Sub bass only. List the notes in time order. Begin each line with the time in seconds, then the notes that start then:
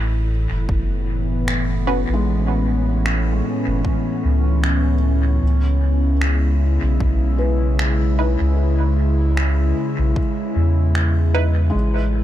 Already playing: A1
0.51 F#1
0.69 F#1
2.09 A1
3.67 F#1
4.24 C#2
5.43 C#2
6.83 B1
7.00 B1
8.41 C#2
9.99 B1
10.56 E2
11.74 A1